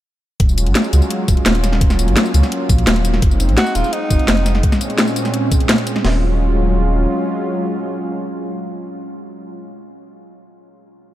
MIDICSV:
0, 0, Header, 1, 5, 480
1, 0, Start_track
1, 0, Tempo, 352941
1, 543, Time_signature, 4, 2, 24, 8
1, 15150, End_track
2, 0, Start_track
2, 0, Title_t, "Tenor saxophone"
2, 0, Program_c, 0, 66
2, 4867, Note_on_c, 0, 66, 110
2, 5105, Note_on_c, 0, 65, 105
2, 5125, Note_off_c, 0, 66, 0
2, 5346, Note_on_c, 0, 63, 100
2, 5367, Note_off_c, 0, 65, 0
2, 6305, Note_off_c, 0, 63, 0
2, 15150, End_track
3, 0, Start_track
3, 0, Title_t, "Analog synth pad"
3, 0, Program_c, 1, 89
3, 542, Note_on_c, 1, 56, 73
3, 543, Note_on_c, 1, 54, 78
3, 543, Note_on_c, 1, 65, 88
3, 544, Note_on_c, 1, 61, 73
3, 2206, Note_off_c, 1, 54, 0
3, 2206, Note_off_c, 1, 56, 0
3, 2224, Note_on_c, 1, 54, 83
3, 2224, Note_on_c, 1, 58, 73
3, 4345, Note_off_c, 1, 61, 0
3, 4345, Note_off_c, 1, 65, 0
3, 4362, Note_off_c, 1, 54, 0
3, 4362, Note_off_c, 1, 58, 0
3, 4383, Note_on_c, 1, 60, 73
3, 4384, Note_on_c, 1, 63, 89
3, 4385, Note_on_c, 1, 56, 80
3, 6284, Note_off_c, 1, 60, 0
3, 6284, Note_off_c, 1, 63, 0
3, 6302, Note_on_c, 1, 46, 79
3, 6302, Note_on_c, 1, 60, 72
3, 6302, Note_on_c, 1, 61, 89
3, 8186, Note_off_c, 1, 56, 0
3, 8203, Note_off_c, 1, 46, 0
3, 8203, Note_off_c, 1, 60, 0
3, 8203, Note_off_c, 1, 61, 0
3, 8221, Note_on_c, 1, 61, 74
3, 8222, Note_on_c, 1, 56, 74
3, 8223, Note_on_c, 1, 65, 89
3, 8224, Note_on_c, 1, 54, 83
3, 13096, Note_off_c, 1, 56, 0
3, 13096, Note_off_c, 1, 61, 0
3, 13096, Note_off_c, 1, 65, 0
3, 13097, Note_off_c, 1, 54, 0
3, 15150, End_track
4, 0, Start_track
4, 0, Title_t, "Sub bass"
4, 0, Program_c, 2, 38
4, 543, Note_on_c, 2, 27, 98
4, 906, Note_on_c, 2, 32, 92
4, 926, Note_off_c, 2, 27, 0
4, 1012, Note_off_c, 2, 32, 0
4, 1265, Note_on_c, 2, 37, 91
4, 1374, Note_off_c, 2, 37, 0
4, 1744, Note_on_c, 2, 27, 91
4, 1853, Note_off_c, 2, 27, 0
4, 1985, Note_on_c, 2, 27, 94
4, 2826, Note_on_c, 2, 32, 91
4, 2846, Note_off_c, 2, 27, 0
4, 2932, Note_off_c, 2, 32, 0
4, 3185, Note_on_c, 2, 37, 95
4, 3293, Note_off_c, 2, 37, 0
4, 3663, Note_on_c, 2, 34, 95
4, 3879, Note_off_c, 2, 34, 0
4, 3904, Note_on_c, 2, 27, 91
4, 4365, Note_off_c, 2, 27, 0
4, 4384, Note_on_c, 2, 29, 100
4, 4747, Note_on_c, 2, 34, 95
4, 4767, Note_off_c, 2, 29, 0
4, 4852, Note_off_c, 2, 34, 0
4, 5105, Note_on_c, 2, 27, 92
4, 5214, Note_off_c, 2, 27, 0
4, 5583, Note_on_c, 2, 29, 91
4, 5692, Note_off_c, 2, 29, 0
4, 5824, Note_on_c, 2, 29, 98
4, 6285, Note_off_c, 2, 29, 0
4, 8223, Note_on_c, 2, 27, 93
4, 9609, Note_off_c, 2, 27, 0
4, 15150, End_track
5, 0, Start_track
5, 0, Title_t, "Drums"
5, 543, Note_on_c, 9, 36, 118
5, 543, Note_on_c, 9, 42, 94
5, 665, Note_on_c, 9, 54, 28
5, 679, Note_off_c, 9, 36, 0
5, 679, Note_off_c, 9, 42, 0
5, 784, Note_off_c, 9, 54, 0
5, 784, Note_on_c, 9, 42, 68
5, 784, Note_on_c, 9, 54, 57
5, 905, Note_off_c, 9, 42, 0
5, 905, Note_on_c, 9, 42, 37
5, 920, Note_off_c, 9, 54, 0
5, 1023, Note_off_c, 9, 42, 0
5, 1023, Note_on_c, 9, 38, 115
5, 1023, Note_on_c, 9, 42, 94
5, 1146, Note_on_c, 9, 54, 28
5, 1159, Note_off_c, 9, 38, 0
5, 1159, Note_off_c, 9, 42, 0
5, 1264, Note_off_c, 9, 54, 0
5, 1264, Note_on_c, 9, 42, 71
5, 1264, Note_on_c, 9, 54, 61
5, 1385, Note_off_c, 9, 54, 0
5, 1385, Note_on_c, 9, 54, 28
5, 1400, Note_off_c, 9, 42, 0
5, 1503, Note_on_c, 9, 42, 94
5, 1521, Note_off_c, 9, 54, 0
5, 1639, Note_off_c, 9, 42, 0
5, 1743, Note_on_c, 9, 36, 106
5, 1743, Note_on_c, 9, 42, 69
5, 1743, Note_on_c, 9, 54, 59
5, 1865, Note_off_c, 9, 42, 0
5, 1865, Note_on_c, 9, 42, 39
5, 1879, Note_off_c, 9, 36, 0
5, 1879, Note_off_c, 9, 54, 0
5, 1983, Note_off_c, 9, 42, 0
5, 1983, Note_on_c, 9, 38, 120
5, 1983, Note_on_c, 9, 42, 98
5, 2107, Note_off_c, 9, 42, 0
5, 2107, Note_on_c, 9, 42, 38
5, 2119, Note_off_c, 9, 38, 0
5, 2225, Note_off_c, 9, 42, 0
5, 2225, Note_on_c, 9, 40, 37
5, 2225, Note_on_c, 9, 42, 67
5, 2225, Note_on_c, 9, 54, 59
5, 2347, Note_off_c, 9, 40, 0
5, 2347, Note_on_c, 9, 40, 50
5, 2361, Note_off_c, 9, 42, 0
5, 2361, Note_off_c, 9, 54, 0
5, 2463, Note_on_c, 9, 36, 118
5, 2465, Note_on_c, 9, 42, 93
5, 2483, Note_off_c, 9, 40, 0
5, 2587, Note_on_c, 9, 40, 58
5, 2587, Note_on_c, 9, 54, 26
5, 2599, Note_off_c, 9, 36, 0
5, 2601, Note_off_c, 9, 42, 0
5, 2705, Note_off_c, 9, 54, 0
5, 2705, Note_on_c, 9, 42, 67
5, 2705, Note_on_c, 9, 54, 57
5, 2723, Note_off_c, 9, 40, 0
5, 2828, Note_off_c, 9, 42, 0
5, 2828, Note_on_c, 9, 42, 37
5, 2841, Note_off_c, 9, 54, 0
5, 2945, Note_off_c, 9, 42, 0
5, 2945, Note_on_c, 9, 38, 120
5, 2945, Note_on_c, 9, 42, 90
5, 3067, Note_on_c, 9, 54, 27
5, 3081, Note_off_c, 9, 38, 0
5, 3081, Note_off_c, 9, 42, 0
5, 3186, Note_off_c, 9, 54, 0
5, 3186, Note_on_c, 9, 42, 68
5, 3186, Note_on_c, 9, 54, 58
5, 3308, Note_off_c, 9, 54, 0
5, 3308, Note_on_c, 9, 40, 37
5, 3308, Note_on_c, 9, 54, 27
5, 3322, Note_off_c, 9, 42, 0
5, 3426, Note_on_c, 9, 42, 91
5, 3444, Note_off_c, 9, 40, 0
5, 3444, Note_off_c, 9, 54, 0
5, 3562, Note_off_c, 9, 42, 0
5, 3663, Note_on_c, 9, 36, 111
5, 3664, Note_on_c, 9, 42, 69
5, 3664, Note_on_c, 9, 54, 59
5, 3787, Note_off_c, 9, 42, 0
5, 3787, Note_on_c, 9, 42, 38
5, 3799, Note_off_c, 9, 36, 0
5, 3800, Note_off_c, 9, 54, 0
5, 3903, Note_off_c, 9, 42, 0
5, 3903, Note_on_c, 9, 38, 122
5, 3903, Note_on_c, 9, 42, 93
5, 4027, Note_off_c, 9, 42, 0
5, 4027, Note_on_c, 9, 42, 37
5, 4039, Note_off_c, 9, 38, 0
5, 4144, Note_off_c, 9, 42, 0
5, 4144, Note_on_c, 9, 42, 66
5, 4144, Note_on_c, 9, 54, 57
5, 4265, Note_on_c, 9, 40, 49
5, 4280, Note_off_c, 9, 42, 0
5, 4280, Note_off_c, 9, 54, 0
5, 4383, Note_on_c, 9, 36, 124
5, 4383, Note_on_c, 9, 42, 92
5, 4401, Note_off_c, 9, 40, 0
5, 4506, Note_on_c, 9, 54, 26
5, 4519, Note_off_c, 9, 36, 0
5, 4519, Note_off_c, 9, 42, 0
5, 4623, Note_off_c, 9, 54, 0
5, 4623, Note_on_c, 9, 42, 62
5, 4623, Note_on_c, 9, 54, 57
5, 4744, Note_off_c, 9, 42, 0
5, 4744, Note_on_c, 9, 42, 36
5, 4759, Note_off_c, 9, 54, 0
5, 4862, Note_off_c, 9, 42, 0
5, 4862, Note_on_c, 9, 38, 119
5, 4862, Note_on_c, 9, 42, 86
5, 4984, Note_on_c, 9, 54, 28
5, 4998, Note_off_c, 9, 38, 0
5, 4998, Note_off_c, 9, 42, 0
5, 5102, Note_off_c, 9, 54, 0
5, 5102, Note_on_c, 9, 42, 65
5, 5102, Note_on_c, 9, 54, 59
5, 5223, Note_off_c, 9, 54, 0
5, 5223, Note_on_c, 9, 54, 27
5, 5238, Note_off_c, 9, 42, 0
5, 5342, Note_on_c, 9, 42, 89
5, 5359, Note_off_c, 9, 54, 0
5, 5478, Note_off_c, 9, 42, 0
5, 5582, Note_on_c, 9, 36, 113
5, 5583, Note_on_c, 9, 42, 67
5, 5583, Note_on_c, 9, 54, 58
5, 5704, Note_off_c, 9, 42, 0
5, 5704, Note_on_c, 9, 42, 37
5, 5718, Note_off_c, 9, 36, 0
5, 5719, Note_off_c, 9, 54, 0
5, 5823, Note_off_c, 9, 42, 0
5, 5823, Note_on_c, 9, 38, 123
5, 5823, Note_on_c, 9, 42, 89
5, 5944, Note_off_c, 9, 42, 0
5, 5944, Note_on_c, 9, 42, 36
5, 5959, Note_off_c, 9, 38, 0
5, 6064, Note_off_c, 9, 42, 0
5, 6064, Note_on_c, 9, 40, 37
5, 6064, Note_on_c, 9, 42, 64
5, 6064, Note_on_c, 9, 54, 56
5, 6184, Note_off_c, 9, 40, 0
5, 6184, Note_on_c, 9, 40, 49
5, 6200, Note_off_c, 9, 42, 0
5, 6200, Note_off_c, 9, 54, 0
5, 6301, Note_on_c, 9, 42, 90
5, 6302, Note_on_c, 9, 36, 119
5, 6320, Note_off_c, 9, 40, 0
5, 6423, Note_on_c, 9, 40, 55
5, 6423, Note_on_c, 9, 54, 27
5, 6437, Note_off_c, 9, 42, 0
5, 6438, Note_off_c, 9, 36, 0
5, 6541, Note_off_c, 9, 54, 0
5, 6541, Note_on_c, 9, 42, 63
5, 6541, Note_on_c, 9, 54, 58
5, 6559, Note_off_c, 9, 40, 0
5, 6663, Note_off_c, 9, 42, 0
5, 6663, Note_on_c, 9, 42, 34
5, 6677, Note_off_c, 9, 54, 0
5, 6779, Note_off_c, 9, 42, 0
5, 6779, Note_on_c, 9, 38, 121
5, 6779, Note_on_c, 9, 42, 84
5, 6902, Note_on_c, 9, 54, 27
5, 6915, Note_off_c, 9, 38, 0
5, 6915, Note_off_c, 9, 42, 0
5, 7020, Note_off_c, 9, 54, 0
5, 7020, Note_on_c, 9, 42, 64
5, 7020, Note_on_c, 9, 54, 59
5, 7141, Note_off_c, 9, 54, 0
5, 7141, Note_on_c, 9, 40, 34
5, 7141, Note_on_c, 9, 54, 27
5, 7156, Note_off_c, 9, 42, 0
5, 7258, Note_on_c, 9, 42, 86
5, 7277, Note_off_c, 9, 40, 0
5, 7277, Note_off_c, 9, 54, 0
5, 7394, Note_off_c, 9, 42, 0
5, 7500, Note_on_c, 9, 42, 63
5, 7500, Note_on_c, 9, 54, 61
5, 7502, Note_on_c, 9, 36, 114
5, 7622, Note_off_c, 9, 42, 0
5, 7622, Note_on_c, 9, 42, 36
5, 7636, Note_off_c, 9, 54, 0
5, 7638, Note_off_c, 9, 36, 0
5, 7740, Note_off_c, 9, 42, 0
5, 7740, Note_on_c, 9, 38, 127
5, 7740, Note_on_c, 9, 42, 88
5, 7863, Note_off_c, 9, 42, 0
5, 7863, Note_on_c, 9, 42, 36
5, 7876, Note_off_c, 9, 38, 0
5, 7980, Note_off_c, 9, 42, 0
5, 7980, Note_on_c, 9, 42, 64
5, 7980, Note_on_c, 9, 54, 57
5, 8103, Note_on_c, 9, 40, 48
5, 8116, Note_off_c, 9, 42, 0
5, 8116, Note_off_c, 9, 54, 0
5, 8222, Note_on_c, 9, 38, 102
5, 8222, Note_on_c, 9, 46, 85
5, 8239, Note_off_c, 9, 40, 0
5, 8358, Note_off_c, 9, 38, 0
5, 8358, Note_off_c, 9, 46, 0
5, 15150, End_track
0, 0, End_of_file